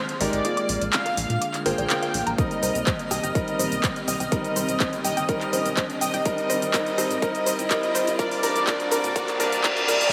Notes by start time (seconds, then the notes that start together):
Already playing: D#3 G#3 C4 D#4 G4 C5 F6, riser
0.09 closed hi-hat
0.20 G#1 G#3 D#4 G4 A#4 D5 G#5, open hi-hat
0.33 G#1, closed hi-hat
0.45 D3 A#3 F4 G#4 D5, closed hi-hat
0.57 D6, closed hi-hat
0.69 A#1, open hi-hat
0.81 A#1 D5, closed hi-hat
0.93 F5, clap, closed hi-hat
1.06 A#4, closed hi-hat
1.17 A#1 G#5, open hi-hat
1.30 A#2, closed hi-hat
1.41 D6, closed hi-hat
1.54 clap, closed hi-hat
1.66 G#1 A#3 F4 G#4 A#4 C5 G5, open hi-hat
1.78 A#1 D5, closed hi-hat
1.90 clap, closed hi-hat
2.02 F5, closed hi-hat
2.14 A#1, open hi-hat
2.27 A#1 A#5, closed hi-hat
2.38 D#3 G3 C4 D#4 G4 A#4 D#5, kick, closed hi-hat, shaker
2.51 closed hi-hat, shaker
2.63 C2 C5, open hi-hat, shaker
2.75 C2, closed hi-hat, shaker
2.87 C5, kick, clap, closed hi-hat, shaker
2.99 closed hi-hat, shaker
3.11 C2 D#5 G5, cross-stick, open hi-hat, shaker
3.23 G1 G5, closed hi-hat, shaker
3.35 G3 C4 D#4 A#4 D#5, kick, closed hi-hat, shaker
3.48 closed hi-hat, shaker
3.59 A#1 C5, open hi-hat, shaker
3.72 C2, closed hi-hat, shaker
3.83 C5, kick, clap, closed hi-hat, shaker
3.96 closed hi-hat, shaker
4.08 C2 D#5 G5, open hi-hat, shaker
4.20 C2 G5, closed hi-hat, shaker
4.32 G3 C4 D#4 A#4 D#5, kick, closed hi-hat, shaker
4.44 closed hi-hat, shaker
4.56 C2 C5, open hi-hat, shaker
4.69 C2, closed hi-hat, shaker
4.80 C5, kick, clap, closed hi-hat, shaker
4.93 closed hi-hat, shaker
5.04 C2 D#5 G5, open hi-hat, shaker
5.17 G1 G5, closed hi-hat, shaker
5.29 G3 C4 D#4 A#4 D#5, kick, closed hi-hat, shaker
5.41 clap, closed hi-hat, shaker
5.53 A#1 C5, open hi-hat, shaker
5.66 C2, closed hi-hat, shaker
5.77 C5, kick, clap, closed hi-hat, shaker
5.90 closed hi-hat, shaker
6.01 C2 D#5 G5, open hi-hat, shaker
6.14 C2 G5, closed hi-hat, shaker
6.25 G3 C4 D#4 A#4 D#5, kick, closed hi-hat, shaker
6.38 closed hi-hat, shaker
6.50 G#1 C5, open hi-hat, shaker
6.62 G#1, closed hi-hat, shaker
6.74 G3 C4 D#4 A#4 D#5, kick, clap, closed hi-hat, shaker
6.86 closed hi-hat, shaker
6.98 G#1 C5, cross-stick, open hi-hat, shaker
7.11 G#2, closed hi-hat, shaker
7.22 G3 C4 D#4 A#4 D#5, kick, closed hi-hat, shaker
7.35 closed hi-hat, shaker
7.46 D#1 C5, open hi-hat, shaker
7.59 G#1, closed hi-hat, shaker
7.70 G3 C4 D#4 A#4 D#5, kick, clap, closed hi-hat, shaker
7.83 closed hi-hat, shaker
7.95 G#1 C5, open hi-hat, shaker
8.07 G#1, closed hi-hat, shaker
8.19 D3 G3 A#3 C4 D4 F4 A#4 D5, kick, closed hi-hat, shaker
8.31 open hi-hat, shaker
8.43 A#1 G3 C4 D4 A#4 D5, open hi-hat, shaker
8.56 A#1, closed hi-hat, shaker
8.67 G3 C4 D4 A#4 D5, kick, clap, closed hi-hat, shaker
8.80 closed hi-hat, shaker
8.91 A#1 G3 C4 D4 A#4 D5, open hi-hat, shaker
9.04 A#2, closed hi-hat, shaker
9.16 G3 C4 D4 A#4 D5, kick, closed hi-hat, reverse cymbal, shaker
9.28 clap, closed hi-hat, shaker
9.40 G#1 G3 C4 D4 A#4 D5, open hi-hat, shaker
9.52 A#1, closed hi-hat, shaker
9.64 G3 C4 D4 A#4 D5, kick, clap, closed hi-hat, shaker
9.77 closed hi-hat, shaker
9.88 A#2 G3 C4 D4 A#4 D5, open hi-hat, shaker
10.01 A#1, closed hi-hat, shaker